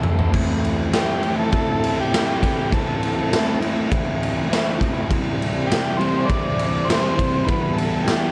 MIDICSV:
0, 0, Header, 1, 4, 480
1, 0, Start_track
1, 0, Key_signature, 0, "minor"
1, 0, Tempo, 595238
1, 276, Time_signature, 4, 2, 24, 8
1, 6707, End_track
2, 0, Start_track
2, 0, Title_t, "Transistor combo organ"
2, 0, Program_c, 0, 18
2, 755, Note_on_c, 0, 67, 90
2, 1090, Note_off_c, 0, 67, 0
2, 1125, Note_on_c, 0, 69, 97
2, 1217, Note_off_c, 0, 69, 0
2, 1227, Note_on_c, 0, 69, 116
2, 1602, Note_off_c, 0, 69, 0
2, 1615, Note_on_c, 0, 67, 93
2, 2075, Note_off_c, 0, 67, 0
2, 2085, Note_on_c, 0, 67, 92
2, 2203, Note_off_c, 0, 67, 0
2, 2208, Note_on_c, 0, 69, 85
2, 2888, Note_off_c, 0, 69, 0
2, 4572, Note_on_c, 0, 67, 85
2, 4813, Note_on_c, 0, 72, 100
2, 4831, Note_off_c, 0, 67, 0
2, 5042, Note_on_c, 0, 74, 97
2, 5072, Note_off_c, 0, 72, 0
2, 5522, Note_on_c, 0, 72, 113
2, 5554, Note_off_c, 0, 74, 0
2, 5763, Note_off_c, 0, 72, 0
2, 5772, Note_on_c, 0, 72, 106
2, 6003, Note_on_c, 0, 71, 92
2, 6032, Note_off_c, 0, 72, 0
2, 6235, Note_on_c, 0, 69, 81
2, 6268, Note_off_c, 0, 71, 0
2, 6476, Note_on_c, 0, 67, 72
2, 6504, Note_off_c, 0, 69, 0
2, 6707, Note_off_c, 0, 67, 0
2, 6707, End_track
3, 0, Start_track
3, 0, Title_t, "Overdriven electric guitar"
3, 0, Program_c, 1, 29
3, 0, Note_on_c, 1, 45, 83
3, 0, Note_on_c, 1, 52, 99
3, 19, Note_on_c, 1, 57, 76
3, 29, Note_on_c, 1, 60, 65
3, 41, Note_on_c, 1, 64, 68
3, 52, Note_on_c, 1, 69, 82
3, 123, Note_off_c, 1, 69, 0
3, 132, Note_on_c, 1, 69, 70
3, 137, Note_off_c, 1, 64, 0
3, 147, Note_off_c, 1, 60, 0
3, 147, Note_on_c, 1, 64, 76
3, 157, Note_on_c, 1, 60, 69
3, 161, Note_off_c, 1, 57, 0
3, 170, Note_on_c, 1, 57, 58
3, 240, Note_off_c, 1, 45, 0
3, 248, Note_off_c, 1, 52, 0
3, 250, Note_off_c, 1, 69, 0
3, 250, Note_on_c, 1, 45, 109
3, 256, Note_off_c, 1, 57, 0
3, 257, Note_off_c, 1, 64, 0
3, 258, Note_on_c, 1, 52, 111
3, 262, Note_off_c, 1, 60, 0
3, 266, Note_on_c, 1, 57, 104
3, 271, Note_on_c, 1, 60, 105
3, 278, Note_on_c, 1, 64, 106
3, 735, Note_off_c, 1, 45, 0
3, 738, Note_on_c, 1, 45, 83
3, 743, Note_off_c, 1, 52, 0
3, 746, Note_on_c, 1, 52, 84
3, 751, Note_off_c, 1, 57, 0
3, 754, Note_on_c, 1, 57, 94
3, 758, Note_off_c, 1, 60, 0
3, 761, Note_on_c, 1, 60, 96
3, 765, Note_off_c, 1, 64, 0
3, 768, Note_on_c, 1, 64, 102
3, 977, Note_off_c, 1, 45, 0
3, 980, Note_on_c, 1, 45, 77
3, 984, Note_off_c, 1, 52, 0
3, 987, Note_on_c, 1, 52, 90
3, 988, Note_off_c, 1, 57, 0
3, 991, Note_on_c, 1, 57, 87
3, 994, Note_off_c, 1, 60, 0
3, 997, Note_on_c, 1, 60, 85
3, 1001, Note_off_c, 1, 64, 0
3, 1004, Note_on_c, 1, 64, 87
3, 1213, Note_off_c, 1, 45, 0
3, 1223, Note_off_c, 1, 57, 0
3, 1223, Note_on_c, 1, 45, 101
3, 1228, Note_off_c, 1, 52, 0
3, 1231, Note_on_c, 1, 52, 83
3, 1233, Note_on_c, 1, 57, 81
3, 1236, Note_off_c, 1, 60, 0
3, 1240, Note_on_c, 1, 60, 106
3, 1242, Note_off_c, 1, 64, 0
3, 1246, Note_on_c, 1, 64, 110
3, 1696, Note_off_c, 1, 45, 0
3, 1705, Note_on_c, 1, 45, 93
3, 1711, Note_off_c, 1, 52, 0
3, 1712, Note_off_c, 1, 57, 0
3, 1714, Note_on_c, 1, 52, 78
3, 1722, Note_off_c, 1, 60, 0
3, 1722, Note_on_c, 1, 57, 93
3, 1725, Note_on_c, 1, 60, 97
3, 1727, Note_off_c, 1, 64, 0
3, 1731, Note_on_c, 1, 64, 95
3, 1947, Note_off_c, 1, 45, 0
3, 1956, Note_off_c, 1, 57, 0
3, 1957, Note_off_c, 1, 52, 0
3, 1957, Note_on_c, 1, 45, 85
3, 1960, Note_on_c, 1, 52, 88
3, 1966, Note_on_c, 1, 57, 88
3, 1974, Note_off_c, 1, 60, 0
3, 1975, Note_off_c, 1, 64, 0
3, 1977, Note_on_c, 1, 60, 83
3, 1979, Note_on_c, 1, 64, 81
3, 2176, Note_off_c, 1, 45, 0
3, 2186, Note_on_c, 1, 45, 99
3, 2191, Note_off_c, 1, 52, 0
3, 2192, Note_off_c, 1, 57, 0
3, 2194, Note_on_c, 1, 52, 107
3, 2201, Note_on_c, 1, 57, 107
3, 2205, Note_off_c, 1, 60, 0
3, 2208, Note_on_c, 1, 60, 109
3, 2211, Note_off_c, 1, 64, 0
3, 2215, Note_on_c, 1, 64, 109
3, 2652, Note_off_c, 1, 45, 0
3, 2662, Note_on_c, 1, 45, 83
3, 2666, Note_off_c, 1, 52, 0
3, 2667, Note_off_c, 1, 57, 0
3, 2669, Note_on_c, 1, 52, 81
3, 2676, Note_on_c, 1, 57, 98
3, 2685, Note_off_c, 1, 60, 0
3, 2687, Note_off_c, 1, 64, 0
3, 2689, Note_on_c, 1, 60, 104
3, 2690, Note_on_c, 1, 64, 99
3, 2884, Note_off_c, 1, 45, 0
3, 2894, Note_on_c, 1, 45, 83
3, 2898, Note_off_c, 1, 52, 0
3, 2901, Note_on_c, 1, 52, 79
3, 2902, Note_off_c, 1, 57, 0
3, 2911, Note_off_c, 1, 60, 0
3, 2912, Note_on_c, 1, 57, 76
3, 2914, Note_on_c, 1, 60, 71
3, 2917, Note_off_c, 1, 64, 0
3, 2920, Note_on_c, 1, 64, 94
3, 3126, Note_off_c, 1, 45, 0
3, 3135, Note_on_c, 1, 45, 97
3, 3137, Note_off_c, 1, 57, 0
3, 3140, Note_off_c, 1, 52, 0
3, 3143, Note_on_c, 1, 52, 103
3, 3145, Note_off_c, 1, 60, 0
3, 3147, Note_on_c, 1, 57, 92
3, 3155, Note_on_c, 1, 60, 104
3, 3161, Note_off_c, 1, 64, 0
3, 3164, Note_on_c, 1, 64, 102
3, 3605, Note_off_c, 1, 45, 0
3, 3615, Note_on_c, 1, 45, 82
3, 3621, Note_off_c, 1, 57, 0
3, 3625, Note_off_c, 1, 52, 0
3, 3625, Note_off_c, 1, 60, 0
3, 3628, Note_on_c, 1, 52, 95
3, 3631, Note_on_c, 1, 57, 90
3, 3635, Note_on_c, 1, 60, 91
3, 3637, Note_off_c, 1, 64, 0
3, 3641, Note_on_c, 1, 64, 93
3, 3845, Note_off_c, 1, 45, 0
3, 3855, Note_on_c, 1, 45, 91
3, 3857, Note_off_c, 1, 52, 0
3, 3857, Note_off_c, 1, 57, 0
3, 3860, Note_on_c, 1, 52, 92
3, 3864, Note_off_c, 1, 60, 0
3, 3866, Note_on_c, 1, 57, 89
3, 3872, Note_off_c, 1, 64, 0
3, 3873, Note_on_c, 1, 60, 84
3, 3876, Note_on_c, 1, 64, 97
3, 4086, Note_off_c, 1, 45, 0
3, 4089, Note_on_c, 1, 48, 107
3, 4093, Note_off_c, 1, 52, 0
3, 4096, Note_off_c, 1, 57, 0
3, 4096, Note_on_c, 1, 52, 103
3, 4099, Note_off_c, 1, 60, 0
3, 4099, Note_on_c, 1, 55, 107
3, 4110, Note_off_c, 1, 64, 0
3, 4110, Note_on_c, 1, 60, 121
3, 4113, Note_on_c, 1, 64, 103
3, 4572, Note_off_c, 1, 48, 0
3, 4581, Note_on_c, 1, 48, 85
3, 4586, Note_off_c, 1, 52, 0
3, 4588, Note_off_c, 1, 60, 0
3, 4589, Note_on_c, 1, 52, 85
3, 4591, Note_off_c, 1, 55, 0
3, 4594, Note_on_c, 1, 55, 96
3, 4598, Note_on_c, 1, 60, 90
3, 4601, Note_off_c, 1, 64, 0
3, 4604, Note_on_c, 1, 64, 97
3, 4808, Note_off_c, 1, 48, 0
3, 4818, Note_on_c, 1, 48, 81
3, 4826, Note_off_c, 1, 52, 0
3, 4826, Note_off_c, 1, 60, 0
3, 4827, Note_off_c, 1, 55, 0
3, 4829, Note_on_c, 1, 52, 77
3, 4830, Note_on_c, 1, 55, 84
3, 4836, Note_on_c, 1, 60, 90
3, 4839, Note_off_c, 1, 64, 0
3, 4842, Note_on_c, 1, 64, 94
3, 5039, Note_off_c, 1, 48, 0
3, 5049, Note_on_c, 1, 48, 93
3, 5055, Note_off_c, 1, 52, 0
3, 5055, Note_off_c, 1, 55, 0
3, 5059, Note_on_c, 1, 52, 93
3, 5063, Note_off_c, 1, 60, 0
3, 5065, Note_on_c, 1, 55, 103
3, 5071, Note_off_c, 1, 64, 0
3, 5073, Note_on_c, 1, 60, 114
3, 5075, Note_on_c, 1, 64, 104
3, 5528, Note_off_c, 1, 48, 0
3, 5538, Note_on_c, 1, 48, 93
3, 5541, Note_off_c, 1, 55, 0
3, 5542, Note_off_c, 1, 52, 0
3, 5545, Note_on_c, 1, 52, 84
3, 5548, Note_off_c, 1, 60, 0
3, 5551, Note_on_c, 1, 55, 94
3, 5557, Note_on_c, 1, 60, 99
3, 5558, Note_off_c, 1, 64, 0
3, 5561, Note_on_c, 1, 64, 96
3, 5764, Note_off_c, 1, 48, 0
3, 5772, Note_off_c, 1, 55, 0
3, 5773, Note_off_c, 1, 52, 0
3, 5773, Note_on_c, 1, 48, 93
3, 5776, Note_on_c, 1, 52, 88
3, 5781, Note_off_c, 1, 60, 0
3, 5782, Note_on_c, 1, 55, 81
3, 5791, Note_on_c, 1, 60, 96
3, 5796, Note_off_c, 1, 64, 0
3, 5799, Note_on_c, 1, 64, 97
3, 6010, Note_off_c, 1, 48, 0
3, 6014, Note_off_c, 1, 52, 0
3, 6015, Note_off_c, 1, 55, 0
3, 6017, Note_on_c, 1, 52, 97
3, 6019, Note_off_c, 1, 60, 0
3, 6025, Note_on_c, 1, 55, 110
3, 6031, Note_on_c, 1, 59, 108
3, 6039, Note_off_c, 1, 64, 0
3, 6042, Note_on_c, 1, 64, 108
3, 6494, Note_off_c, 1, 52, 0
3, 6494, Note_off_c, 1, 55, 0
3, 6498, Note_off_c, 1, 59, 0
3, 6498, Note_on_c, 1, 52, 82
3, 6504, Note_on_c, 1, 55, 81
3, 6507, Note_on_c, 1, 59, 91
3, 6514, Note_off_c, 1, 64, 0
3, 6517, Note_on_c, 1, 64, 113
3, 6707, Note_off_c, 1, 52, 0
3, 6707, Note_off_c, 1, 55, 0
3, 6707, Note_off_c, 1, 59, 0
3, 6707, Note_off_c, 1, 64, 0
3, 6707, End_track
4, 0, Start_track
4, 0, Title_t, "Drums"
4, 27, Note_on_c, 9, 45, 92
4, 108, Note_off_c, 9, 45, 0
4, 152, Note_on_c, 9, 43, 84
4, 233, Note_off_c, 9, 43, 0
4, 270, Note_on_c, 9, 49, 116
4, 273, Note_on_c, 9, 36, 100
4, 351, Note_off_c, 9, 49, 0
4, 354, Note_off_c, 9, 36, 0
4, 520, Note_on_c, 9, 51, 71
4, 601, Note_off_c, 9, 51, 0
4, 753, Note_on_c, 9, 51, 88
4, 754, Note_on_c, 9, 38, 114
4, 833, Note_off_c, 9, 51, 0
4, 835, Note_off_c, 9, 38, 0
4, 991, Note_on_c, 9, 51, 65
4, 1071, Note_off_c, 9, 51, 0
4, 1227, Note_on_c, 9, 51, 88
4, 1232, Note_on_c, 9, 36, 99
4, 1308, Note_off_c, 9, 51, 0
4, 1313, Note_off_c, 9, 36, 0
4, 1480, Note_on_c, 9, 51, 80
4, 1561, Note_off_c, 9, 51, 0
4, 1726, Note_on_c, 9, 51, 112
4, 1728, Note_on_c, 9, 38, 125
4, 1807, Note_off_c, 9, 51, 0
4, 1808, Note_off_c, 9, 38, 0
4, 1959, Note_on_c, 9, 36, 100
4, 1962, Note_on_c, 9, 51, 93
4, 2039, Note_off_c, 9, 36, 0
4, 2043, Note_off_c, 9, 51, 0
4, 2197, Note_on_c, 9, 36, 104
4, 2205, Note_on_c, 9, 51, 92
4, 2278, Note_off_c, 9, 36, 0
4, 2285, Note_off_c, 9, 51, 0
4, 2442, Note_on_c, 9, 51, 79
4, 2522, Note_off_c, 9, 51, 0
4, 2685, Note_on_c, 9, 51, 104
4, 2687, Note_on_c, 9, 38, 124
4, 2766, Note_off_c, 9, 51, 0
4, 2767, Note_off_c, 9, 38, 0
4, 2921, Note_on_c, 9, 51, 71
4, 3002, Note_off_c, 9, 51, 0
4, 3159, Note_on_c, 9, 36, 121
4, 3164, Note_on_c, 9, 51, 107
4, 3239, Note_off_c, 9, 36, 0
4, 3244, Note_off_c, 9, 51, 0
4, 3411, Note_on_c, 9, 51, 78
4, 3491, Note_off_c, 9, 51, 0
4, 3652, Note_on_c, 9, 51, 105
4, 3653, Note_on_c, 9, 38, 124
4, 3732, Note_off_c, 9, 51, 0
4, 3734, Note_off_c, 9, 38, 0
4, 3879, Note_on_c, 9, 36, 89
4, 3889, Note_on_c, 9, 51, 82
4, 3960, Note_off_c, 9, 36, 0
4, 3969, Note_off_c, 9, 51, 0
4, 4117, Note_on_c, 9, 36, 101
4, 4122, Note_on_c, 9, 51, 100
4, 4198, Note_off_c, 9, 36, 0
4, 4203, Note_off_c, 9, 51, 0
4, 4372, Note_on_c, 9, 51, 76
4, 4452, Note_off_c, 9, 51, 0
4, 4608, Note_on_c, 9, 51, 96
4, 4610, Note_on_c, 9, 38, 121
4, 4689, Note_off_c, 9, 51, 0
4, 4691, Note_off_c, 9, 38, 0
4, 4844, Note_on_c, 9, 51, 60
4, 4925, Note_off_c, 9, 51, 0
4, 5075, Note_on_c, 9, 51, 108
4, 5077, Note_on_c, 9, 36, 109
4, 5156, Note_off_c, 9, 51, 0
4, 5158, Note_off_c, 9, 36, 0
4, 5316, Note_on_c, 9, 51, 81
4, 5397, Note_off_c, 9, 51, 0
4, 5562, Note_on_c, 9, 51, 115
4, 5564, Note_on_c, 9, 38, 116
4, 5643, Note_off_c, 9, 51, 0
4, 5645, Note_off_c, 9, 38, 0
4, 5798, Note_on_c, 9, 36, 95
4, 5801, Note_on_c, 9, 51, 84
4, 5879, Note_off_c, 9, 36, 0
4, 5881, Note_off_c, 9, 51, 0
4, 6033, Note_on_c, 9, 51, 100
4, 6037, Note_on_c, 9, 36, 109
4, 6114, Note_off_c, 9, 51, 0
4, 6118, Note_off_c, 9, 36, 0
4, 6276, Note_on_c, 9, 51, 85
4, 6357, Note_off_c, 9, 51, 0
4, 6512, Note_on_c, 9, 51, 96
4, 6513, Note_on_c, 9, 38, 111
4, 6592, Note_off_c, 9, 51, 0
4, 6594, Note_off_c, 9, 38, 0
4, 6707, End_track
0, 0, End_of_file